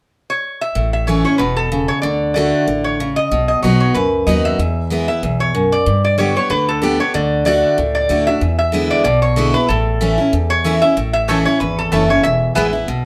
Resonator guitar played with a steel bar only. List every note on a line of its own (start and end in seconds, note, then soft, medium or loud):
0.30 0.59 C#5 medium
0.61 0.92 E5 loud
0.93 1.08 E5 medium
1.07 1.24 C#5 medium
1.25 1.38 C#5 medium
1.38 1.57 B4 medium
1.57 1.89 A4 medium
1.88 2.01 C#5 medium
2.02 2.33 D5 medium
2.34 2.81 D5 medium
2.84 3.18 C#5 medium
3.16 3.46 D#5 loud
3.48 3.62 D#5 medium
3.62 3.79 C#5 medium
3.80 3.95 C#5 medium
3.94 4.28 B4 medium
4.27 4.45 D#5 medium
4.45 4.88 E5 loud
5.08 5.41 E5 loud
5.40 5.73 C#5 medium
5.72 6.02 D5 loud
6.05 6.18 D5 medium
6.18 6.35 C#5 medium
6.37 6.51 C#5 medium
6.50 6.69 B4 medium
6.69 7.01 A4 medium
7.00 7.14 C#5 medium
7.15 7.45 D5 medium
7.46 7.92 D5 medium
7.95 8.28 D5 medium
8.27 8.57 E5 medium
8.59 8.89 E5 medium
8.91 9.03 D5 loud
9.04 9.22 D5 loud
9.22 9.56 C#5 medium
9.54 9.68 B4 medium
9.69 10.53 A4 loud
10.50 10.83 C#5 medium
10.82 11.12 E5 loud
11.13 11.29 E5 loud
11.28 11.44 C#5 medium
11.45 11.60 C#5 medium
11.60 11.79 B4 medium
11.79 12.11 A4 medium
12.10 12.25 C#5 medium
12.23 12.54 E5 medium
12.55 13.02 E5 medium